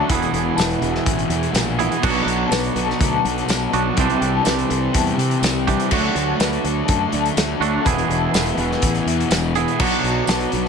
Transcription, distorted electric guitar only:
0.09 0.57 E2 loud
0.09 0.58 B2 loud
0.09 0.60 E3 loud
0.58 1.06 E2 medium
0.58 0.83 B2 medium
0.58 0.81 E3 medium
0.82 1.06 B2 medium
0.82 1.07 E3 medium
1.07 1.55 E2 medium
1.07 1.33 B2 medium
1.07 1.31 E3 medium
1.32 1.81 B2 medium
1.32 1.80 E3 medium
1.81 2.03 B2 medium
1.81 2.03 E3 medium
2.05 2.53 B2 loud
2.05 2.54 F#3 loud
2.05 2.55 B3 loud
2.54 3.01 B2 medium
2.54 2.78 F#3 medium
2.54 2.76 B3 medium
2.78 3.02 F#3 medium
2.78 3.03 B3 medium
3.02 3.50 B2 medium
3.02 3.26 F#3 medium
3.02 3.24 B3 medium
3.25 3.75 F#3 medium
3.25 3.72 B3 medium
3.73 3.98 F#3 medium
3.73 3.96 B3 medium
3.97 4.45 C3 medium
3.97 4.46 G3 loud
3.97 4.47 C4 loud
4.46 4.92 C3 medium
4.46 4.72 G3 medium
4.46 4.69 C4 medium
4.70 4.94 G3 medium
4.70 4.94 C4 medium
4.93 5.42 C3 medium
4.93 5.20 G3 medium
4.93 5.18 C4 medium
5.19 5.69 G3 medium
5.19 5.66 C4 medium
5.68 5.91 G3 medium
5.68 5.90 C4 medium
5.90 6.40 D3 medium
5.90 6.41 A3 loud
5.90 6.41 D4 loud
6.41 6.88 D3 medium
6.41 6.65 A3 medium
6.41 6.63 D4 loud
6.64 6.89 A3 medium
6.64 6.89 D4 medium
6.89 7.37 D3 medium
6.89 7.14 A3 medium
6.89 7.13 D4 medium
7.14 7.64 A3 medium
7.14 7.62 D4 medium
7.63 7.86 A3 medium
7.63 7.85 D4 medium
7.86 8.34 E2 loud
7.86 8.35 B2 loud
7.86 8.36 E3 loud
8.35 8.81 E2 medium
8.35 8.61 B2 medium
8.35 8.58 E3 medium
8.60 8.82 B2 medium
8.60 8.83 E3 medium
8.82 9.31 E2 medium
8.82 9.08 B2 medium
8.82 9.06 E3 medium
9.07 9.56 B2 medium
9.07 9.54 E3 medium
9.56 9.78 B2 medium
9.56 9.78 E3 medium
9.79 10.27 B2 loud
9.79 10.29 F#3 loud
9.79 10.30 B3 loud
10.29 10.68 B2 medium
10.29 10.55 F#3 medium
10.29 10.52 B3 medium
10.54 10.68 F#3 medium
10.54 10.68 B3 medium

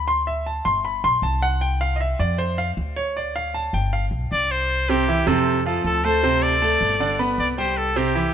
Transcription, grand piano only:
0.08 0.26 C6 loud
0.27 0.46 E5 medium
0.46 0.65 A5 medium
0.65 0.84 C6 loud
0.85 1.03 B5 medium
1.04 1.23 C6 loud
1.23 1.42 A5 medium
1.42 1.61 F#5 loud
1.61 1.80 G5 medium
1.81 1.99 F5 loud
1.96 1.99 D#5 medium
2.01 2.19 E5 medium
2.20 2.38 D5 medium
2.38 2.57 C5 medium
2.58 2.70 F5 loud
2.96 3.15 C#5 medium
3.17 3.35 D5 medium
3.36 3.54 F5 loud
3.54 3.73 A5 medium
3.74 3.92 G5 medium
3.93 4.04 F5 medium
4.89 5.05 C3 medium
4.89 5.05 C4 medium
4.89 5.05 C5 medium
5.08 5.24 E3 medium
5.08 5.24 E4 medium
5.08 5.24 E5 medium
5.27 5.58 C3 medium
5.27 5.59 C4 medium
5.27 5.59 C5 medium
5.66 5.97 F3 medium
5.66 5.98 F4 medium
5.66 5.98 F5 medium
6.04 6.20 A3 medium
6.04 6.20 A4 medium
6.04 6.20 A5 medium
6.23 6.55 C3 medium
6.23 6.55 C4 medium
6.23 6.55 C5 medium
6.62 6.93 A3 medium
6.62 6.94 A4 medium
6.62 6.94 A5 medium
7.00 7.16 D3 medium
7.00 7.16 D4 medium
7.00 7.16 D5 medium
7.19 7.51 B3 medium
7.19 7.51 B4 medium
7.19 7.51 B5 medium
7.58 7.89 G3 medium
7.58 7.90 G4 medium
7.58 7.90 G5 medium
7.96 8.12 C3 medium
7.96 8.12 C4 medium
7.96 8.12 C5 medium
8.15 8.31 E3 medium
8.15 8.31 E4 medium
8.15 8.31 E5 medium

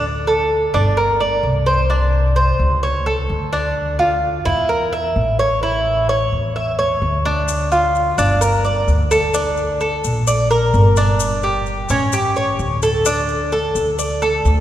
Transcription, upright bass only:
0.00 0.67 D2 medium
0.74 1.40 G1 medium
1.43 2.53 C2 loud
2.59 3.25 C#2 medium
3.30 4.40 D2 medium
4.46 5.12 E2 medium
5.16 6.26 A1 medium
6.32 6.98 E2 medium
7.02 8.12 D2 medium
8.18 8.84 G1 medium
8.88 9.98 D2 medium
10.05 10.70 A#1 medium
10.74 11.84 G1 loud
11.90 12.56 A1 medium
12.59 13.69 D2 medium
13.75 14.41 D2 medium
14.45 14.60 D2 medium

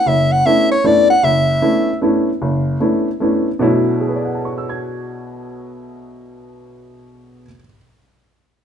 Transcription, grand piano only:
0.06 0.40 F#1 medium
0.45 0.72 A3 medium
0.45 0.72 B3 soft
0.45 0.72 C#4 soft
0.45 0.72 D4 soft
0.45 0.73 E4 medium
0.84 1.11 A3 medium
0.84 1.11 B3 soft
0.84 1.11 C#4 soft
0.84 1.11 D4 soft
0.84 1.11 E4 medium
1.23 1.57 F#1 medium
1.62 1.89 A3 medium
1.62 1.89 B3 soft
1.62 1.89 C#4 soft
1.62 1.90 D4 soft
1.62 1.89 E4 medium
2.01 2.29 A3 soft
2.01 2.29 B3 soft
2.01 2.29 C#4 soft
2.01 2.29 D4 soft
2.01 2.29 E4 medium
2.42 2.75 F#1 medium
2.80 3.07 A3 soft
2.80 3.07 B3 soft
2.80 3.08 C#4 soft
2.80 3.08 D4 soft
2.80 3.08 E4 medium
3.20 3.47 A3 soft
3.20 3.48 B3 soft
3.20 3.48 C#4 soft
3.20 3.48 D4 soft
3.20 3.48 E4 medium
3.59 7.45 B2 medium
3.59 7.45 F#3 medium
3.59 7.45 A3 medium
3.59 7.46 D4 medium
3.59 7.46 E4 medium
3.59 7.46 C#5 medium
4.01 7.42 G#4 soft
4.08 7.46 B4 soft
4.16 7.50 D5 soft
4.25 7.54 F#5 soft
4.35 7.59 A5 soft
4.45 7.64 C#6 soft
4.58 7.70 E6 soft
4.69 7.76 G#6 soft

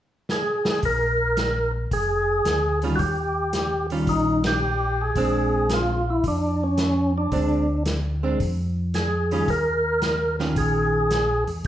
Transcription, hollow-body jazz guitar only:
2.83 2.98 D#3 medium
2.83 2.98 G3 medium
2.83 2.98 C#4 medium
2.83 2.99 F4 medium
3.91 4.59 D#3 medium
3.91 4.59 G3 medium
3.91 4.59 C#4 medium
3.91 4.59 F4 medium
5.17 6.00 G#3 medium
5.17 6.00 C4 medium
5.17 6.00 D4 medium
7.32 7.65 G#3 medium
7.32 7.66 C4 medium
7.32 7.66 D4 medium
8.23 8.38 G#3 medium
8.23 8.39 C4 medium
8.23 8.39 D4 medium
9.32 9.47 D#3 medium
9.32 9.47 G3 medium
9.32 9.47 C#4 medium
9.32 9.47 F4 medium
10.40 11.07 D#3 medium
10.40 11.08 C#4 medium
10.40 11.08 F4 medium

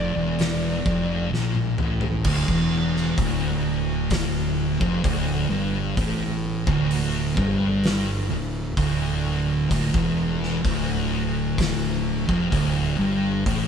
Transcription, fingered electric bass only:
0.00 0.14 F1 medium
0.15 0.81 E1 medium
0.86 1.29 F1 medium
1.32 1.75 A#1 medium
1.78 2.21 A1 medium
2.25 2.46 D1 loud
2.48 3.14 E1 loud
3.17 4.76 D1 loud
4.81 5.02 F1 medium
5.04 5.47 D1 loud
5.50 5.93 G1 loud
5.97 6.63 A1 loud
6.67 7.33 D1 loud
7.37 8.26 G1 loud
8.30 8.74 D1 medium
8.77 9.67 D1 medium
9.70 9.92 D1 loud
9.94 10.61 E1 loud
10.65 12.25 D1 loud
12.29 12.51 F1 medium
12.52 12.96 D1 loud
12.99 13.43 G1 loud
13.46 13.68 A1 medium

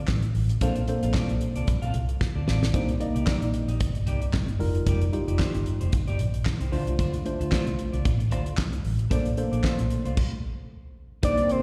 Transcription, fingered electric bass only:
0.09 0.30 A1 medium
0.35 0.56 A1 medium
0.61 0.82 A#1 loud
1.03 1.12 A#1 loud
1.29 1.39 A#1 medium
1.56 1.65 C2 medium
1.68 1.89 A#1 medium
1.94 2.15 C2 medium
2.36 2.45 D2 medium
2.47 2.59 A1 medium
2.62 2.71 A#1 medium
2.74 2.95 C2 loud
3.15 3.25 C2 medium
3.42 3.51 A#1 medium
3.68 3.78 A#1 medium
3.81 4.01 G1 medium
4.07 4.28 C2 medium
4.34 4.54 G1 medium
4.60 4.81 F1 loud
4.86 5.07 F1 loud
5.28 5.37 F1 loud
5.55 5.64 G1 medium
5.81 5.90 F1 medium
5.93 6.14 G1 loud
6.19 6.40 A#1 medium
6.60 6.70 C2 medium
6.72 6.84 D2 medium
6.87 6.96 C2 medium
6.99 7.20 D2 loud
7.40 7.50 D2 medium
7.67 7.76 C2 medium
7.93 8.03 C2 medium
8.05 8.32 A1 loud
8.32 8.53 D2 medium
8.58 8.79 C2 loud
8.84 9.06 A1 medium
9.11 9.32 A#1 loud
9.52 9.62 A#1 medium
9.79 9.88 A#1 medium
10.06 10.15 C2 medium
11.23 11.35 C2 loud

